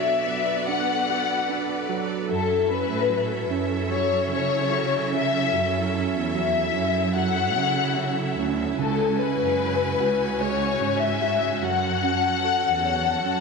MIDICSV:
0, 0, Header, 1, 5, 480
1, 0, Start_track
1, 0, Key_signature, 3, "minor"
1, 0, Tempo, 810811
1, 1362, Time_signature, 4, 2, 24, 8
1, 7935, End_track
2, 0, Start_track
2, 0, Title_t, "Violin section"
2, 0, Program_c, 0, 48
2, 0, Note_on_c, 0, 76, 71
2, 380, Note_off_c, 0, 76, 0
2, 402, Note_on_c, 0, 78, 75
2, 1122, Note_off_c, 0, 78, 0
2, 1363, Note_on_c, 0, 69, 70
2, 1586, Note_off_c, 0, 69, 0
2, 1601, Note_on_c, 0, 71, 77
2, 2081, Note_off_c, 0, 71, 0
2, 2320, Note_on_c, 0, 73, 60
2, 2544, Note_off_c, 0, 73, 0
2, 2561, Note_on_c, 0, 73, 68
2, 3018, Note_off_c, 0, 73, 0
2, 3051, Note_on_c, 0, 76, 79
2, 3526, Note_off_c, 0, 76, 0
2, 3764, Note_on_c, 0, 76, 66
2, 4219, Note_off_c, 0, 76, 0
2, 4240, Note_on_c, 0, 78, 86
2, 4937, Note_off_c, 0, 78, 0
2, 5198, Note_on_c, 0, 69, 69
2, 5423, Note_off_c, 0, 69, 0
2, 5435, Note_on_c, 0, 71, 69
2, 6159, Note_off_c, 0, 71, 0
2, 6159, Note_on_c, 0, 73, 68
2, 6510, Note_on_c, 0, 76, 79
2, 6520, Note_off_c, 0, 73, 0
2, 6874, Note_on_c, 0, 78, 91
2, 6876, Note_off_c, 0, 76, 0
2, 7935, Note_off_c, 0, 78, 0
2, 7935, End_track
3, 0, Start_track
3, 0, Title_t, "String section"
3, 0, Program_c, 1, 48
3, 0, Note_on_c, 1, 59, 54
3, 0, Note_on_c, 1, 66, 55
3, 0, Note_on_c, 1, 69, 49
3, 0, Note_on_c, 1, 73, 51
3, 0, Note_on_c, 1, 74, 63
3, 149, Note_off_c, 1, 73, 0
3, 159, Note_on_c, 1, 71, 48
3, 1336, Note_off_c, 1, 74, 0
3, 1337, Note_off_c, 1, 59, 0
3, 1342, Note_off_c, 1, 66, 0
3, 1349, Note_off_c, 1, 71, 0
3, 1353, Note_on_c, 1, 54, 57
3, 1356, Note_on_c, 1, 76, 62
3, 1357, Note_on_c, 1, 64, 52
3, 1358, Note_on_c, 1, 61, 50
3, 5174, Note_off_c, 1, 54, 0
3, 5174, Note_off_c, 1, 69, 0
3, 5175, Note_off_c, 1, 76, 0
3, 5176, Note_off_c, 1, 61, 0
3, 5193, Note_on_c, 1, 61, 51
3, 5194, Note_on_c, 1, 49, 57
3, 5195, Note_on_c, 1, 80, 64
3, 5197, Note_on_c, 1, 66, 56
3, 6856, Note_off_c, 1, 64, 0
3, 6861, Note_off_c, 1, 49, 0
3, 6862, Note_off_c, 1, 80, 0
3, 6876, Note_on_c, 1, 69, 65
3, 7935, Note_off_c, 1, 61, 0
3, 7935, Note_off_c, 1, 66, 0
3, 7935, Note_off_c, 1, 69, 0
3, 7935, End_track
4, 0, Start_track
4, 0, Title_t, "Grand piano"
4, 0, Program_c, 2, 0
4, 0, Control_c, 2, 64, 127
4, 0, Note_on_c, 2, 47, 51
4, 0, Note_on_c, 2, 54, 43
4, 0, Note_on_c, 2, 62, 39
4, 0, Note_on_c, 2, 66, 40
4, 154, Note_off_c, 2, 54, 0
4, 163, Note_on_c, 2, 54, 36
4, 395, Note_off_c, 2, 62, 0
4, 404, Note_on_c, 2, 62, 43
4, 639, Note_off_c, 2, 66, 0
4, 648, Note_on_c, 2, 66, 37
4, 874, Note_off_c, 2, 62, 0
4, 883, Note_on_c, 2, 62, 39
4, 1097, Note_off_c, 2, 47, 0
4, 1099, Note_off_c, 2, 54, 0
4, 1119, Note_on_c, 2, 54, 45
4, 1343, Note_off_c, 2, 66, 0
4, 1347, Note_off_c, 2, 54, 0
4, 1348, Note_off_c, 2, 62, 0
4, 1356, Note_on_c, 2, 54, 50
4, 1370, Control_c, 2, 64, 0
4, 1465, Control_c, 2, 64, 127
4, 1599, Note_on_c, 2, 61, 37
4, 1824, Note_off_c, 2, 54, 0
4, 1833, Note_on_c, 2, 54, 37
4, 2063, Note_off_c, 2, 61, 0
4, 2071, Note_on_c, 2, 61, 41
4, 2307, Note_off_c, 2, 54, 0
4, 2316, Note_on_c, 2, 54, 42
4, 2546, Note_off_c, 2, 61, 0
4, 2555, Note_on_c, 2, 61, 38
4, 2784, Note_off_c, 2, 54, 0
4, 2793, Note_on_c, 2, 54, 42
4, 3025, Note_off_c, 2, 61, 0
4, 3034, Note_on_c, 2, 61, 41
4, 3269, Note_off_c, 2, 54, 0
4, 3278, Note_on_c, 2, 54, 54
4, 3509, Note_off_c, 2, 61, 0
4, 3518, Note_on_c, 2, 61, 39
4, 3748, Note_off_c, 2, 54, 0
4, 3757, Note_on_c, 2, 54, 42
4, 3992, Note_off_c, 2, 61, 0
4, 4001, Note_on_c, 2, 61, 42
4, 4231, Note_off_c, 2, 54, 0
4, 4240, Note_on_c, 2, 54, 44
4, 4473, Note_off_c, 2, 61, 0
4, 4482, Note_on_c, 2, 61, 40
4, 4708, Note_off_c, 2, 54, 0
4, 4717, Note_on_c, 2, 54, 43
4, 4955, Note_off_c, 2, 61, 0
4, 4964, Note_on_c, 2, 61, 45
4, 5185, Note_off_c, 2, 54, 0
4, 5196, Note_off_c, 2, 61, 0
4, 5201, Note_on_c, 2, 49, 57
4, 5208, Control_c, 2, 64, 0
4, 5302, Control_c, 2, 64, 127
4, 5440, Note_on_c, 2, 56, 38
4, 5680, Note_on_c, 2, 61, 40
4, 5921, Note_on_c, 2, 66, 42
4, 6152, Note_off_c, 2, 56, 0
4, 6161, Note_on_c, 2, 56, 47
4, 6388, Note_off_c, 2, 61, 0
4, 6396, Note_on_c, 2, 61, 41
4, 6633, Note_off_c, 2, 66, 0
4, 6642, Note_on_c, 2, 66, 44
4, 6858, Note_off_c, 2, 49, 0
4, 6860, Note_off_c, 2, 56, 0
4, 6865, Note_off_c, 2, 61, 0
4, 6875, Note_off_c, 2, 66, 0
4, 6882, Note_on_c, 2, 54, 53
4, 6891, Control_c, 2, 64, 0
4, 6979, Control_c, 2, 64, 127
4, 7123, Note_on_c, 2, 61, 45
4, 7365, Note_on_c, 2, 69, 42
4, 7598, Note_on_c, 2, 73, 41
4, 7835, Note_off_c, 2, 61, 0
4, 7844, Note_on_c, 2, 61, 38
4, 7935, Note_off_c, 2, 54, 0
4, 7935, Note_off_c, 2, 61, 0
4, 7935, Note_off_c, 2, 69, 0
4, 7935, Note_off_c, 2, 73, 0
4, 7935, End_track
5, 0, Start_track
5, 0, Title_t, "Cello section"
5, 0, Program_c, 3, 48
5, 1358, Note_on_c, 3, 42, 62
5, 1696, Note_off_c, 3, 42, 0
5, 1720, Note_on_c, 3, 45, 54
5, 2057, Note_off_c, 3, 45, 0
5, 2081, Note_on_c, 3, 42, 61
5, 2538, Note_off_c, 3, 42, 0
5, 2556, Note_on_c, 3, 49, 69
5, 3255, Note_off_c, 3, 49, 0
5, 3278, Note_on_c, 3, 42, 74
5, 3616, Note_off_c, 3, 42, 0
5, 3638, Note_on_c, 3, 40, 63
5, 3977, Note_off_c, 3, 40, 0
5, 3998, Note_on_c, 3, 42, 68
5, 4477, Note_on_c, 3, 49, 65
5, 4480, Note_off_c, 3, 42, 0
5, 4936, Note_off_c, 3, 49, 0
5, 4960, Note_on_c, 3, 38, 66
5, 5184, Note_off_c, 3, 38, 0
5, 5198, Note_on_c, 3, 37, 86
5, 5536, Note_off_c, 3, 37, 0
5, 5559, Note_on_c, 3, 42, 62
5, 5897, Note_off_c, 3, 42, 0
5, 5925, Note_on_c, 3, 37, 67
5, 6380, Note_off_c, 3, 37, 0
5, 6402, Note_on_c, 3, 44, 71
5, 6858, Note_off_c, 3, 44, 0
5, 6884, Note_on_c, 3, 42, 73
5, 7339, Note_off_c, 3, 42, 0
5, 7482, Note_on_c, 3, 40, 63
5, 7818, Note_off_c, 3, 40, 0
5, 7841, Note_on_c, 3, 42, 66
5, 7935, Note_off_c, 3, 42, 0
5, 7935, End_track
0, 0, End_of_file